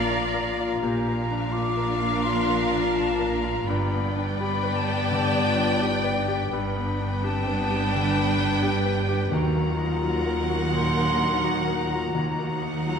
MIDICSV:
0, 0, Header, 1, 10, 480
1, 0, Start_track
1, 0, Tempo, 720288
1, 538, Time_signature, 4, 2, 24, 8
1, 2927, Tempo, 705882
1, 8776, End_track
2, 0, Start_track
2, 0, Title_t, "Flute"
2, 0, Program_c, 0, 73
2, 0, Note_on_c, 0, 82, 69
2, 538, Note_off_c, 0, 82, 0
2, 542, Note_on_c, 0, 82, 57
2, 1013, Note_on_c, 0, 86, 59
2, 1023, Note_off_c, 0, 82, 0
2, 1486, Note_on_c, 0, 84, 69
2, 1496, Note_off_c, 0, 86, 0
2, 1718, Note_off_c, 0, 84, 0
2, 1722, Note_on_c, 0, 82, 70
2, 1961, Note_on_c, 0, 81, 65
2, 1971, Note_off_c, 0, 82, 0
2, 2199, Note_on_c, 0, 82, 65
2, 2209, Note_off_c, 0, 81, 0
2, 2444, Note_on_c, 0, 83, 59
2, 2454, Note_off_c, 0, 82, 0
2, 2758, Note_off_c, 0, 83, 0
2, 2924, Note_on_c, 0, 83, 65
2, 3170, Note_on_c, 0, 81, 63
2, 3180, Note_off_c, 0, 83, 0
2, 3894, Note_on_c, 0, 79, 61
2, 3904, Note_off_c, 0, 81, 0
2, 4367, Note_off_c, 0, 79, 0
2, 4371, Note_on_c, 0, 83, 67
2, 4858, Note_on_c, 0, 81, 69
2, 4868, Note_off_c, 0, 83, 0
2, 5794, Note_off_c, 0, 81, 0
2, 5798, Note_on_c, 0, 79, 66
2, 6286, Note_on_c, 0, 82, 66
2, 6296, Note_off_c, 0, 79, 0
2, 6761, Note_off_c, 0, 82, 0
2, 6765, Note_on_c, 0, 82, 61
2, 7068, Note_off_c, 0, 82, 0
2, 7244, Note_on_c, 0, 84, 66
2, 7720, Note_on_c, 0, 82, 70
2, 7730, Note_off_c, 0, 84, 0
2, 8685, Note_off_c, 0, 82, 0
2, 8691, Note_on_c, 0, 82, 56
2, 8776, Note_off_c, 0, 82, 0
2, 8776, End_track
3, 0, Start_track
3, 0, Title_t, "Violin section"
3, 0, Program_c, 1, 48
3, 0, Note_on_c, 1, 77, 75
3, 512, Note_off_c, 1, 77, 0
3, 550, Note_on_c, 1, 77, 75
3, 2428, Note_off_c, 1, 77, 0
3, 2453, Note_on_c, 1, 79, 74
3, 4345, Note_off_c, 1, 79, 0
3, 4378, Note_on_c, 1, 79, 78
3, 6254, Note_off_c, 1, 79, 0
3, 6275, Note_on_c, 1, 78, 78
3, 8175, Note_off_c, 1, 78, 0
3, 8200, Note_on_c, 1, 78, 73
3, 8776, Note_off_c, 1, 78, 0
3, 8776, End_track
4, 0, Start_track
4, 0, Title_t, "Violin section"
4, 0, Program_c, 2, 48
4, 0, Note_on_c, 2, 70, 70
4, 507, Note_off_c, 2, 70, 0
4, 539, Note_on_c, 2, 70, 71
4, 2422, Note_off_c, 2, 70, 0
4, 2456, Note_on_c, 2, 71, 72
4, 4347, Note_off_c, 2, 71, 0
4, 4376, Note_on_c, 2, 71, 69
4, 6253, Note_off_c, 2, 71, 0
4, 6291, Note_on_c, 2, 70, 69
4, 8183, Note_off_c, 2, 70, 0
4, 8211, Note_on_c, 2, 70, 68
4, 8776, Note_off_c, 2, 70, 0
4, 8776, End_track
5, 0, Start_track
5, 0, Title_t, "Clarinet"
5, 0, Program_c, 3, 71
5, 0, Note_on_c, 3, 65, 58
5, 539, Note_off_c, 3, 65, 0
5, 543, Note_on_c, 3, 67, 65
5, 775, Note_on_c, 3, 65, 60
5, 785, Note_off_c, 3, 67, 0
5, 1486, Note_off_c, 3, 65, 0
5, 1489, Note_on_c, 3, 65, 62
5, 2431, Note_off_c, 3, 65, 0
5, 2450, Note_on_c, 3, 62, 59
5, 3206, Note_off_c, 3, 62, 0
5, 3409, Note_on_c, 3, 67, 69
5, 3647, Note_on_c, 3, 65, 65
5, 3657, Note_off_c, 3, 67, 0
5, 3891, Note_on_c, 3, 63, 66
5, 3901, Note_off_c, 3, 65, 0
5, 4140, Note_on_c, 3, 62, 61
5, 4150, Note_off_c, 3, 63, 0
5, 4854, Note_on_c, 3, 60, 71
5, 4865, Note_off_c, 3, 62, 0
5, 5088, Note_on_c, 3, 59, 77
5, 5098, Note_off_c, 3, 60, 0
5, 5334, Note_on_c, 3, 62, 66
5, 5344, Note_off_c, 3, 59, 0
5, 5812, Note_on_c, 3, 67, 62
5, 5822, Note_off_c, 3, 62, 0
5, 6282, Note_on_c, 3, 66, 70
5, 6292, Note_off_c, 3, 67, 0
5, 6521, Note_off_c, 3, 66, 0
5, 6533, Note_on_c, 3, 65, 68
5, 7246, Note_on_c, 3, 63, 67
5, 7256, Note_off_c, 3, 65, 0
5, 7495, Note_on_c, 3, 62, 66
5, 7505, Note_off_c, 3, 63, 0
5, 7726, Note_off_c, 3, 62, 0
5, 7730, Note_on_c, 3, 63, 65
5, 7982, Note_on_c, 3, 65, 63
5, 7993, Note_off_c, 3, 63, 0
5, 8213, Note_off_c, 3, 65, 0
5, 8216, Note_on_c, 3, 66, 57
5, 8517, Note_off_c, 3, 66, 0
5, 8695, Note_on_c, 3, 65, 64
5, 8776, Note_off_c, 3, 65, 0
5, 8776, End_track
6, 0, Start_track
6, 0, Title_t, "Grand piano"
6, 0, Program_c, 4, 0
6, 0, Control_c, 4, 64, 127
6, 0, Note_on_c, 4, 53, 49
6, 0, Note_on_c, 4, 58, 51
6, 0, Note_on_c, 4, 62, 49
6, 0, Note_on_c, 4, 65, 48
6, 0, Note_on_c, 4, 70, 53
6, 63, Note_off_c, 4, 65, 0
6, 63, Note_on_c, 4, 65, 55
6, 153, Note_off_c, 4, 62, 0
6, 228, Note_off_c, 4, 70, 0
6, 228, Note_on_c, 4, 70, 51
6, 318, Note_off_c, 4, 65, 0
6, 398, Note_on_c, 4, 65, 56
6, 481, Note_off_c, 4, 70, 0
6, 550, Control_c, 4, 64, 0
6, 555, Note_off_c, 4, 58, 0
6, 556, Note_off_c, 4, 53, 0
6, 556, Note_on_c, 4, 46, 58
6, 645, Note_off_c, 4, 65, 0
6, 659, Control_c, 4, 64, 127
6, 717, Note_on_c, 4, 58, 47
6, 872, Note_on_c, 4, 62, 52
6, 959, Note_off_c, 4, 58, 0
6, 1022, Note_on_c, 4, 65, 51
6, 1115, Note_off_c, 4, 62, 0
6, 1178, Note_on_c, 4, 70, 46
6, 1268, Note_off_c, 4, 65, 0
6, 1338, Note_on_c, 4, 65, 48
6, 1427, Note_off_c, 4, 70, 0
6, 1469, Note_off_c, 4, 46, 0
6, 1498, Note_on_c, 4, 53, 46
6, 1588, Note_off_c, 4, 65, 0
6, 1656, Note_on_c, 4, 58, 49
6, 1750, Note_off_c, 4, 53, 0
6, 1814, Note_on_c, 4, 62, 51
6, 1909, Note_off_c, 4, 58, 0
6, 1972, Note_on_c, 4, 65, 57
6, 2068, Note_off_c, 4, 62, 0
6, 2127, Note_on_c, 4, 70, 52
6, 2226, Note_off_c, 4, 65, 0
6, 2293, Note_on_c, 4, 65, 56
6, 2384, Note_off_c, 4, 70, 0
6, 2451, Note_off_c, 4, 65, 0
6, 2460, Note_on_c, 4, 43, 58
6, 2462, Control_c, 4, 64, 0
6, 2575, Control_c, 4, 64, 127
6, 2619, Note_on_c, 4, 59, 43
6, 2776, Note_on_c, 4, 62, 49
6, 2868, Note_off_c, 4, 59, 0
6, 2934, Note_on_c, 4, 67, 55
6, 3027, Note_off_c, 4, 62, 0
6, 3093, Note_on_c, 4, 71, 52
6, 3187, Note_off_c, 4, 67, 0
6, 3252, Note_on_c, 4, 67, 51
6, 3346, Note_off_c, 4, 71, 0
6, 3386, Note_off_c, 4, 43, 0
6, 3411, Note_on_c, 4, 50, 53
6, 3507, Note_off_c, 4, 67, 0
6, 3576, Note_on_c, 4, 59, 49
6, 3666, Note_off_c, 4, 50, 0
6, 3727, Note_on_c, 4, 62, 46
6, 3829, Note_off_c, 4, 59, 0
6, 3893, Note_on_c, 4, 67, 56
6, 3984, Note_off_c, 4, 62, 0
6, 4046, Note_on_c, 4, 71, 54
6, 4147, Note_off_c, 4, 67, 0
6, 4212, Note_on_c, 4, 67, 59
6, 4304, Note_off_c, 4, 71, 0
6, 4381, Note_on_c, 4, 43, 59
6, 4383, Control_c, 4, 64, 0
6, 4467, Note_off_c, 4, 67, 0
6, 4482, Control_c, 4, 64, 127
6, 4535, Note_on_c, 4, 59, 48
6, 4702, Note_on_c, 4, 62, 49
6, 4789, Note_off_c, 4, 59, 0
6, 4863, Note_on_c, 4, 67, 54
6, 4951, Note_off_c, 4, 62, 0
6, 5024, Note_on_c, 4, 71, 49
6, 5111, Note_off_c, 4, 67, 0
6, 5180, Note_on_c, 4, 67, 51
6, 5270, Note_off_c, 4, 71, 0
6, 5304, Note_off_c, 4, 43, 0
6, 5342, Note_on_c, 4, 50, 52
6, 5427, Note_off_c, 4, 67, 0
6, 5496, Note_on_c, 4, 59, 49
6, 5586, Note_off_c, 4, 50, 0
6, 5643, Note_on_c, 4, 62, 54
6, 5742, Note_off_c, 4, 59, 0
6, 5806, Note_on_c, 4, 67, 58
6, 5895, Note_off_c, 4, 62, 0
6, 5961, Note_on_c, 4, 71, 52
6, 6056, Note_off_c, 4, 67, 0
6, 6119, Note_on_c, 4, 67, 58
6, 6214, Note_off_c, 4, 71, 0
6, 6274, Note_on_c, 4, 39, 61
6, 6278, Note_off_c, 4, 67, 0
6, 6290, Control_c, 4, 64, 0
6, 6384, Control_c, 4, 64, 127
6, 6434, Note_on_c, 4, 58, 47
6, 6594, Note_on_c, 4, 63, 51
6, 6693, Note_off_c, 4, 58, 0
6, 6756, Note_on_c, 4, 54, 58
6, 6853, Note_off_c, 4, 63, 0
6, 6918, Note_on_c, 4, 70, 52
6, 7013, Note_off_c, 4, 54, 0
6, 7074, Note_on_c, 4, 66, 50
6, 7175, Note_off_c, 4, 70, 0
6, 7212, Note_off_c, 4, 39, 0
6, 7230, Note_on_c, 4, 46, 46
6, 7334, Note_off_c, 4, 66, 0
6, 7405, Note_on_c, 4, 58, 50
6, 7494, Note_off_c, 4, 46, 0
6, 7568, Note_on_c, 4, 63, 48
6, 7661, Note_off_c, 4, 58, 0
6, 7721, Note_on_c, 4, 66, 57
6, 7823, Note_off_c, 4, 63, 0
6, 7879, Note_on_c, 4, 70, 51
6, 7978, Note_off_c, 4, 66, 0
6, 8045, Note_on_c, 4, 66, 52
6, 8137, Note_off_c, 4, 70, 0
6, 8201, Note_on_c, 4, 39, 57
6, 8215, Control_c, 4, 64, 0
6, 8300, Note_off_c, 4, 66, 0
6, 8340, Control_c, 4, 64, 127
6, 8364, Note_on_c, 4, 58, 42
6, 8524, Note_on_c, 4, 63, 48
6, 8622, Note_off_c, 4, 58, 0
6, 8692, Note_on_c, 4, 54, 52
6, 8776, Note_off_c, 4, 39, 0
6, 8776, Note_off_c, 4, 54, 0
6, 8776, Note_off_c, 4, 63, 0
6, 8776, End_track
7, 0, Start_track
7, 0, Title_t, "Viola section"
7, 0, Program_c, 5, 48
7, 0, Note_on_c, 5, 74, 78
7, 512, Note_off_c, 5, 74, 0
7, 541, Note_on_c, 5, 62, 73
7, 2424, Note_off_c, 5, 62, 0
7, 2450, Note_on_c, 5, 74, 78
7, 4344, Note_off_c, 5, 74, 0
7, 4369, Note_on_c, 5, 62, 78
7, 6250, Note_off_c, 5, 62, 0
7, 6276, Note_on_c, 5, 51, 73
7, 8176, Note_off_c, 5, 51, 0
7, 8211, Note_on_c, 5, 63, 72
7, 8776, Note_off_c, 5, 63, 0
7, 8776, End_track
8, 0, Start_track
8, 0, Title_t, "French horn section"
8, 0, Program_c, 6, 60
8, 0, Note_on_c, 6, 58, 78
8, 0, Note_on_c, 6, 74, 71
8, 517, Note_off_c, 6, 58, 0
8, 518, Note_off_c, 6, 74, 0
8, 544, Note_on_c, 6, 58, 73
8, 544, Note_on_c, 6, 62, 70
8, 2425, Note_off_c, 6, 58, 0
8, 2425, Note_off_c, 6, 62, 0
8, 2448, Note_on_c, 6, 74, 72
8, 2454, Note_on_c, 6, 59, 69
8, 4258, Note_off_c, 6, 59, 0
8, 4258, Note_off_c, 6, 74, 0
8, 4374, Note_on_c, 6, 62, 69
8, 4374, Note_on_c, 6, 71, 73
8, 6252, Note_off_c, 6, 62, 0
8, 6252, Note_off_c, 6, 71, 0
8, 6274, Note_on_c, 6, 58, 76
8, 6275, Note_on_c, 6, 54, 70
8, 8174, Note_off_c, 6, 58, 0
8, 8175, Note_off_c, 6, 54, 0
8, 8215, Note_on_c, 6, 54, 71
8, 8218, Note_on_c, 6, 58, 68
8, 8776, Note_off_c, 6, 54, 0
8, 8776, Note_off_c, 6, 58, 0
8, 8776, End_track
9, 0, Start_track
9, 0, Title_t, "Cello section"
9, 0, Program_c, 7, 48
9, 0, Note_on_c, 7, 46, 74
9, 511, Note_off_c, 7, 46, 0
9, 536, Note_on_c, 7, 46, 66
9, 2421, Note_off_c, 7, 46, 0
9, 2449, Note_on_c, 7, 43, 63
9, 4343, Note_off_c, 7, 43, 0
9, 4374, Note_on_c, 7, 43, 71
9, 6252, Note_off_c, 7, 43, 0
9, 6283, Note_on_c, 7, 39, 71
9, 8179, Note_off_c, 7, 39, 0
9, 8207, Note_on_c, 7, 39, 65
9, 8776, Note_off_c, 7, 39, 0
9, 8776, End_track
10, 0, Start_track
10, 0, Title_t, "Double bass section"
10, 0, Program_c, 8, 48
10, 0, Note_on_c, 8, 34, 67
10, 510, Note_off_c, 8, 34, 0
10, 536, Note_on_c, 8, 34, 69
10, 2421, Note_off_c, 8, 34, 0
10, 2446, Note_on_c, 8, 31, 65
10, 4341, Note_off_c, 8, 31, 0
10, 4371, Note_on_c, 8, 31, 72
10, 6250, Note_off_c, 8, 31, 0
10, 6279, Note_on_c, 8, 39, 70
10, 8177, Note_off_c, 8, 39, 0
10, 8205, Note_on_c, 8, 39, 61
10, 8776, Note_off_c, 8, 39, 0
10, 8776, End_track
0, 0, End_of_file